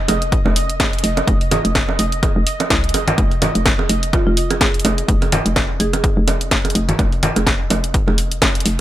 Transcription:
Already playing: D#5
0.08 F1, open hi-hat, low bongo
0.22 closed hi-hat
0.32 kick, closed hi-hat
0.46 F1, low bongo
0.56 open hi-hat
0.70 closed hi-hat
0.80 D#1, kick, snare, closed hi-hat, low bongo
0.93 closed hi-hat
0.99 closed hi-hat
1.04 F1, open hi-hat
1.17 closed hi-hat, low bongo
1.27 F1, kick, closed hi-hat
1.41 open hi-hat
1.51 open hi-hat, low bongo, low conga
1.65 F1, closed hi-hat
1.75 kick, snare, closed hi-hat
1.89 low bongo
1.99 F1, open hi-hat
2.12 closed hi-hat
2.23 kick, closed hi-hat, low bongo
2.36 F1
2.47 open hi-hat
2.60 closed hi-hat, low bongo
2.70 C2, kick, snare, closed hi-hat
2.84 closed hi-hat
2.89 closed hi-hat
2.94 F1, open hi-hat, low bongo
3.08 closed hi-hat, low conga
3.18 F1, kick, closed hi-hat
3.31 open hi-hat
3.42 open hi-hat, low bongo, low conga
3.55 F1, closed hi-hat
3.66 kick, snare, closed hi-hat
3.79 low bongo
3.89 F1, open hi-hat
4.03 closed hi-hat
4.13 F4, kick, closed hi-hat, low bongo
4.27 F1 F4
4.37 open hi-hat
4.50 G#4, closed hi-hat, low bongo
4.61 D#1 G#4, kick, snare, closed hi-hat
4.74 closed hi-hat
4.79 closed hi-hat
4.85 F1, open hi-hat, low bongo
4.98 closed hi-hat
5.08 F1, kick, closed hi-hat
5.22 open hi-hat, low bongo
5.32 open hi-hat, low conga
5.46 F1, closed hi-hat
5.56 kick, snare, closed hi-hat, low bongo
5.80 F1 G#4, open hi-hat
5.93 G#4, closed hi-hat, low bongo
6.04 kick, closed hi-hat
6.17 F1
6.28 open hi-hat, low bongo
6.41 closed hi-hat
6.51 D#1, kick, snare, closed hi-hat
6.65 closed hi-hat, low bongo
6.70 closed hi-hat
6.75 F1, open hi-hat
6.89 closed hi-hat, low conga
6.99 F1, kick, closed hi-hat, low bongo
7.12 open hi-hat
7.23 open hi-hat, low conga
7.36 F1, closed hi-hat, low bongo
7.47 kick, snare, closed hi-hat
7.70 F1, open hi-hat, low bongo
7.84 closed hi-hat
7.94 kick, closed hi-hat
8.08 F1, low bongo
8.18 open hi-hat
8.31 closed hi-hat
8.42 D#1, kick, snare, closed hi-hat, low bongo
8.55 closed hi-hat
8.60 closed hi-hat
8.66 F1, open hi-hat

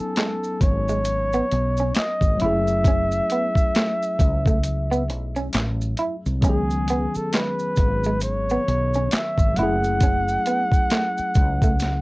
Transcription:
Already playing: F#3 B3 C#4 D#4 G#5
0.00 A4
0.16 G#3, finger snap, snare, clap, closed hi-hat, maracas
0.44 maracas
0.61 G#1 C#5, muted clean electric guitar stroke, kick, closed hi-hat, maracas
0.89 G#3, maracas
1.05 closed hi-hat, maracas
1.33 B3, maracas
1.52 B1, muted clean electric guitar stroke, closed hi-hat
1.77 C#4, maracas
1.95 D#5, finger snap, snare, clap, closed hi-hat, maracas
2.21 G#1, kick, maracas
2.37 F#3 A3 E5, closed hi-hat
2.41 F#1 C#4 E4
2.46 G#4
2.68 maracas
2.84 C#4, kick, closed hi-hat, maracas
3.12 maracas
3.30 B3, closed hi-hat, maracas
3.55 muted fretless electric bass stroke, kick, maracas
3.75 A3, finger snap, snare, clap, closed hi-hat, maracas
4.03 maracas
4.19 C#2, muted clean electric guitar stroke, kick, closed hi-hat, maracas
4.46 A3, kick, maracas
4.63 closed hi-hat, maracas
4.91 B3, maracas
5.10 B1, muted clean electric guitar stroke, closed hi-hat
5.36 C#4, maracas
5.53 A1, finger snap, snare, clap, closed hi-hat, maracas
5.81 maracas
5.97 E4, closed hi-hat
6.26 C2, maracas
6.41 C#2 F#3 B3 C#4, kick, closed hi-hat, maracas
6.45 D#3 C#4 G#4
6.49 G#4
6.70 maracas
6.88 B3, closed hi-hat, maracas
7.15 A4, muted fretless electric bass stroke, maracas
7.33 G#3 B4, finger snap, snare, clap, closed hi-hat, maracas
7.59 maracas
7.76 G#1, muted clean electric guitar stroke, kick, closed hi-hat, maracas
8.04 G#3, maracas
8.21 C#5, closed hi-hat, maracas
8.50 B3, maracas
8.68 B1, muted clean electric guitar stroke, closed hi-hat
8.94 C#4, maracas
9.11 E5, finger snap, snare, clap, closed hi-hat, maracas
9.38 G#1, kick, maracas
9.54 F#1 F#3 A3 F#5, closed hi-hat
9.58 C#4 E4
9.63 G#4
9.84 maracas
10.00 C#4, kick, closed hi-hat, maracas
10.28 maracas
10.46 B3, closed hi-hat, maracas
10.72 muted fretless electric bass stroke, kick, maracas
10.90 A3, finger snap, snare, clap, closed hi-hat, maracas
11.18 muted fretless electric bass stroke, maracas
11.35 C#2, muted clean electric guitar stroke, kick, closed hi-hat, maracas
11.62 A3, kick, maracas
11.80 snare, closed hi-hat, maracas

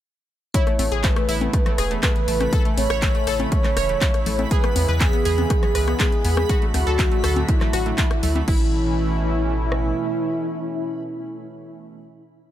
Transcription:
0.54 C#3 E3 A3 B3 E4 C#5 B5, kick, closed hi-hat
0.67 A3, cross-stick, closed hi-hat
0.79 A1 A3, open hi-hat, high conga
0.92 A1 G#4, closed hi-hat
1.04 A3 B4, kick, clap, closed hi-hat
1.16 A3, cross-stick, closed hi-hat
1.29 A1 E4, open hi-hat
1.41 A3, closed hi-hat, high conga
1.53 A3, kick, cross-stick, closed hi-hat
1.66 A3, cross-stick, closed hi-hat, low conga
1.78 E1 G#4, cross-stick, open hi-hat
1.91 A3, closed hi-hat
2.03 A3 B4, kick, cross-stick, clap, closed hi-hat
2.16 closed hi-hat
2.28 A1 A3, open hi-hat
2.41 A3, cross-stick, closed hi-hat, high conga
2.53 C#4 A4, kick, closed hi-hat
2.65 A3, closed hi-hat
2.77 A1 A3 C#5, open hi-hat, high conga
2.90 A1 C#5, cross-stick, closed hi-hat
3.02 A3, kick, clap, closed hi-hat
3.15 A3, closed hi-hat
3.27 A1 A4, cross-stick, open hi-hat
3.40 A3, closed hi-hat, high conga
3.52 A3 C#5, kick, closed hi-hat
3.64 A3, cross-stick, clap, closed hi-hat, low conga
3.77 E1 C#5, cross-stick, open hi-hat
3.89 A3, closed hi-hat
4.01 A3, kick, clap, closed hi-hat
4.14 cross-stick, closed hi-hat
4.26 A1 A3, open hi-hat, low conga
4.39 A3, closed hi-hat, high conga
4.51 E3 G#3 B3 G#4 B4, kick, closed hi-hat
4.64 B3, cross-stick, closed hi-hat
4.76 E2 B3, open hi-hat, high conga
4.88 E2 B4, closed hi-hat
5.00 B3 G#4, kick, cross-stick, clap, closed hi-hat
5.13 B3, closed hi-hat
5.25 E2 G#4, open hi-hat
5.38 B3, closed hi-hat, high conga
5.50 B3, kick, cross-stick, closed hi-hat
5.63 B3, cross-stick, closed hi-hat, low conga
5.75 C#2 B4, cross-stick, open hi-hat
5.88 B3, cross-stick, closed hi-hat
6.00 B3 G#4, kick, clap, closed hi-hat
6.12 closed hi-hat
6.25 E2 B3, open hi-hat
6.37 B3, cross-stick, closed hi-hat, high conga
6.49 A2 D3 F#3 D4 F#4, kick, closed hi-hat
6.62 A3, closed hi-hat
6.74 D2 A3 F#4, cross-stick, open hi-hat, high conga
6.87 D2 A4, closed hi-hat
6.99 A3, kick, clap, closed hi-hat
7.12 A3, closed hi-hat
7.24 D2 A4, cross-stick, open hi-hat
7.36 A3, closed hi-hat, high conga
7.49 A3 E4, kick, closed hi-hat
7.61 A3, cross-stick, clap, closed hi-hat, low conga
7.73 A1 F#4, cross-stick, open hi-hat
7.86 A3, closed hi-hat
7.98 A3, kick, clap, closed hi-hat
8.11 cross-stick, closed hi-hat
8.23 D2 A3, open hi-hat, low conga
8.36 A3, closed hi-hat, high conga
8.48 A1 B2 E3 A3 C#4 E4, kick, crash
9.72 cross-stick

